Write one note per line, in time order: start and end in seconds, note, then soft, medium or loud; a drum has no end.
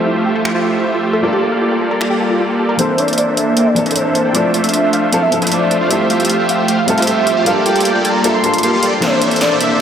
0.00 1.20 F3 medium
0.00 1.19 G3 medium
0.00 1.21 A3 medium
0.00 1.22 A3 medium
0.00 1.20 C4 medium
0.00 1.21 F4 medium
0.00 1.21 G4 medium
0.00 1.22 G4 medium
0.00 1.22 A4 medium
0.00 1.21 C5 medium
0.00 1.19 E5 medium
0.00 1.21 E5 medium
0.06 0.11 E4 medium
0.16 0.23 F4 medium
0.26 0.30 G4 medium
0.35 0.42 A4 loud
0.45 0.48 E4 medium
0.45 finger snap medium
0.55 0.60 F4 loud
0.65 0.72 G4 medium
0.74 0.79 E4 medium
0.84 0.89 E4 medium
0.94 1.01 F4 medium
1.03 1.08 G4 medium
1.13 1.20 A4 medium
1.21 2.75 G3 medium
1.21 2.77 G3 medium
1.21 2.76 A#3 medium
1.21 2.77 A#3 medium
1.21 2.76 D4 medium
1.21 2.77 F4 medium
1.21 1.30 F4 medium
1.21 2.77 F4 medium
1.21 2.77 G4 medium
1.21 2.76 A4 medium
1.21 2.77 A4 medium
1.21 2.77 D5 medium
1.21 2.77 F5 medium
1.25 2.77 A4 medium
1.33 1.37 G4 loud
1.42 1.50 A4 medium
1.52 1.55 A#4 medium
1.62 1.67 F4 medium
1.72 1.79 G4 medium
1.81 1.86 A4 medium
1.91 1.98 A#4 medium
2.01 2.04 F4 medium
2.01 finger snap medium
2.10 2.15 G4 loud
2.20 2.27 A4 medium
2.30 2.35 F4 medium
2.40 2.45 F4 medium
2.50 2.57 G4 medium
2.59 2.64 A4 medium
2.69 2.76 A#4 loud
2.77 3.73 E3 medium
2.77 3.73 A#3 medium
2.77 2.96 A#3 medium
2.77 4.33 A#3 medium
2.77 3.74 C4 medium
2.77 2.96 D4 medium
2.77 5.87 D4 medium
2.77 3.74 D4 medium
2.77 2.96 A4 medium
2.77 4.33 A4 medium
2.77 3.00 C5 loud
2.77 2.96 C5 medium
2.77 5.87 C5 medium
2.77 2.96 E5 medium
2.77 7.42 E5 medium
2.77 closed hi-hat medium
2.81 3.75 A4 medium
2.98 3.25 A#3 medium
2.98 3.25 D4 medium
2.98 3.25 A4 medium
2.98 3.25 C5 medium
2.98 3.15 D5 medium
2.98 3.25 E5 medium
2.98 closed hi-hat medium
3.08 closed hi-hat soft
3.13 closed hi-hat medium
3.18 3.35 D5 medium
3.18 closed hi-hat medium
3.27 3.54 A#3 medium
3.27 3.54 D4 medium
3.27 3.54 A4 medium
3.27 3.54 C5 medium
3.27 3.54 E5 medium
3.37 3.68 E5 loud
3.37 closed hi-hat medium
3.57 3.67 A#3 medium
3.57 3.67 D4 medium
3.57 3.67 A4 medium
3.57 3.67 C5 medium
3.57 3.67 G5 medium
3.57 closed hi-hat medium
3.66 3.97 D5 medium
3.74 4.31 E3 medium
3.74 4.32 A#3 medium
3.74 4.32 C4 medium
3.74 4.33 D4 medium
3.74 closed hi-hat medium
3.78 4.33 A4 loud
3.86 4.23 A#3 medium
3.86 4.23 D4 medium
3.86 4.23 A4 medium
3.86 4.23 C5 medium
3.86 4.23 E5 medium
3.86 closed hi-hat soft
3.91 closed hi-hat medium
3.96 4.29 C5 medium
3.96 closed hi-hat medium
4.15 closed hi-hat medium
4.25 4.33 A#3 medium
4.25 4.33 D4 medium
4.25 4.33 A4 medium
4.25 4.33 C5 medium
4.25 4.33 G5 loud
4.33 5.09 F3 medium
4.33 7.43 F3 medium
4.33 4.52 A3 medium
4.33 5.10 C4 medium
4.33 4.52 D4 medium
4.33 5.10 D4 medium
4.33 5.11 E4 medium
4.33 4.52 F4 medium
4.33 5.11 A4 medium
4.33 4.52 C5 medium
4.33 4.51 D5 loud
4.33 4.52 E5 medium
4.33 closed hi-hat medium
4.54 4.81 A3 medium
4.54 4.81 D4 medium
4.54 4.81 F4 medium
4.54 4.81 C5 medium
4.54 4.71 E5 medium
4.54 4.81 E5 medium
4.54 closed hi-hat medium
4.64 closed hi-hat soft
4.69 closed hi-hat medium
4.74 4.90 E5 medium
4.74 closed hi-hat medium
4.83 5.10 A3 medium
4.83 5.10 D4 medium
4.83 5.10 F4 medium
4.83 5.10 C5 medium
4.83 5.10 E5 medium
4.93 5.18 F5 medium
4.93 closed hi-hat medium
5.12 5.29 F3 loud
5.12 5.23 A3 medium
5.12 5.30 C4 medium
5.12 5.30 D4 medium
5.12 5.23 D4 medium
5.12 5.30 E4 medium
5.12 5.23 F4 medium
5.12 5.30 A4 loud
5.12 5.23 C5 medium
5.12 5.23 F5 medium
5.12 closed hi-hat medium
5.22 5.47 E5 medium
5.30 5.87 F3 medium
5.30 5.88 C4 medium
5.30 5.88 D4 medium
5.30 5.89 A4 medium
5.30 5.89 E5 medium
5.30 closed hi-hat medium
5.42 5.79 A3 medium
5.42 5.79 D4 medium
5.42 5.79 F4 medium
5.42 5.79 C5 medium
5.42 5.79 E5 medium
5.42 closed hi-hat soft
5.47 closed hi-hat medium
5.51 5.85 D5 medium
5.51 closed hi-hat medium
5.71 closed hi-hat medium
5.81 5.89 A3 loud
5.81 5.89 D4 medium
5.81 5.89 F4 medium
5.81 5.89 C5 medium
5.81 5.89 F5 loud
5.89 6.84 G3 medium
5.89 6.08 A3 medium
5.89 7.45 A3 medium
5.89 6.85 C4 medium
5.89 6.86 E4 medium
5.89 6.08 F4 medium
5.89 6.86 F4 medium
5.89 6.08 G4 medium
5.89 7.45 G4 medium
5.89 6.08 C5 medium
5.89 6.07 E5 loud
5.89 6.08 E5 medium
5.89 closed hi-hat medium
5.93 6.87 A4 medium
6.10 6.37 A3 medium
6.10 6.37 F4 medium
6.10 6.37 G4 medium
6.10 6.37 C5 medium
6.10 6.37 E5 medium
6.10 6.27 F5 medium
6.10 closed hi-hat medium
6.20 closed hi-hat soft
6.25 closed hi-hat medium
6.29 6.51 F5 medium
6.29 closed hi-hat medium
6.39 6.66 A3 medium
6.39 6.66 F4 medium
6.39 6.66 G4 medium
6.39 6.66 C5 medium
6.39 6.66 E5 medium
6.49 6.74 G5 medium
6.49 closed hi-hat medium
6.68 6.79 A3 medium
6.68 6.79 F4 medium
6.68 6.79 G4 medium
6.68 6.79 C5 medium
6.68 6.79 F5 medium
6.68 closed hi-hat medium
6.78 7.03 F5 medium
6.86 7.43 G3 medium
6.86 7.44 C4 medium
6.86 7.45 F4 medium
6.86 7.44 E5 medium
6.86 closed hi-hat medium
6.90 7.45 A4 loud
6.98 7.34 A3 medium
6.98 7.34 F4 medium
6.98 7.34 G4 medium
6.98 7.34 C5 medium
6.98 7.34 E5 medium
6.98 closed hi-hat soft
7.02 closed hi-hat medium
7.07 7.41 E5 medium
7.07 closed hi-hat medium
7.27 closed hi-hat medium
7.37 7.45 A3 medium
7.37 7.45 F4 medium
7.37 7.45 G4 medium
7.37 7.45 C5 medium
7.37 7.45 F5 loud
7.44 8.21 G3 medium
7.44 9.01 G3 medium
7.44 8.21 A#3 medium
7.44 9.81 A#3 medium
7.44 7.63 A#3 medium
7.44 8.22 D4 medium
7.44 7.63 F4 medium
7.44 8.22 F4 medium
7.44 7.63 G4 medium
7.44 7.63 A4 medium
7.44 9.81 A4 medium
7.44 7.63 D5 medium
7.44 9.01 F5 medium
7.44 7.63 F5 loud
7.44 closed hi-hat medium
7.48 8.23 A4 loud
7.66 7.93 A#3 medium
7.66 7.93 F4 medium
7.66 7.93 G4 medium
7.66 7.93 A4 medium
7.66 7.93 D5 medium
7.66 7.83 G5 medium
7.66 closed hi-hat medium
7.76 closed hi-hat soft
7.80 closed hi-hat medium
7.85 8.06 G5 medium
7.85 closed hi-hat medium
7.95 8.22 A#3 medium
7.95 8.22 F4 medium
7.95 8.22 G4 medium
7.95 8.22 A4 medium
7.95 8.22 D5 medium
8.05 8.30 A#5 loud
8.05 closed hi-hat medium
8.23 8.40 G3 medium
8.23 8.41 A#3 medium
8.23 8.35 A#3 medium
8.23 8.41 D4 medium
8.23 8.35 F4 medium
8.23 8.42 F4 medium
8.23 8.35 G4 medium
8.23 8.35 A4 medium
8.23 8.42 A4 loud
8.23 8.35 E5 medium
8.23 closed hi-hat medium
8.34 8.59 C6 loud
8.42 8.99 G3 medium
8.42 8.99 A#3 medium
8.42 9.00 D4 medium
8.42 9.00 F4 medium
8.42 9.01 A4 medium
8.42 closed hi-hat medium
8.54 closed hi-hat soft
8.58 closed hi-hat medium
8.63 8.71 A#3 medium
8.63 8.71 F4 medium
8.63 8.71 G4 medium
8.63 8.71 A4 medium
8.63 8.71 F5 medium
8.63 9.04 C6 medium
8.63 closed hi-hat medium
8.73 8.80 A#3 medium
8.73 8.80 F4 medium
8.73 8.80 G4 medium
8.73 8.80 A4 medium
8.73 8.80 F5 loud
8.83 8.93 A#3 medium
8.83 8.93 F4 medium
8.83 8.93 G4 medium
8.83 8.93 A4 medium
8.83 8.93 D5 medium
8.83 closed hi-hat medium
9.00 9.81 E3 medium
9.00 9.81 A#3 medium
9.00 9.19 A#3 medium
9.00 9.81 C4 medium
9.00 9.81 D4 medium
9.00 9.19 D4 medium
9.00 9.81 D4 medium
9.00 9.19 A4 medium
9.00 9.81 A4 medium
9.00 9.23 C5 loud
9.00 9.81 C5 medium
9.00 9.19 C5 medium
9.00 9.19 E5 medium
9.00 9.81 E5 medium
9.00 snare soft
9.00 closed hi-hat medium
9.00 riser medium
9.22 9.49 A#3 medium
9.22 9.49 D4 medium
9.22 9.49 A4 medium
9.22 9.49 C5 medium
9.22 9.39 D5 medium
9.22 9.49 E5 medium
9.22 closed hi-hat medium
9.31 closed hi-hat soft
9.36 closed hi-hat medium
9.41 9.58 D5 medium
9.41 snare medium
9.41 closed hi-hat medium
9.51 9.78 A#3 medium
9.51 9.78 D4 medium
9.51 9.78 A4 medium
9.51 9.78 C5 medium
9.51 9.78 E5 medium
9.61 9.81 E5 loud
9.61 closed hi-hat medium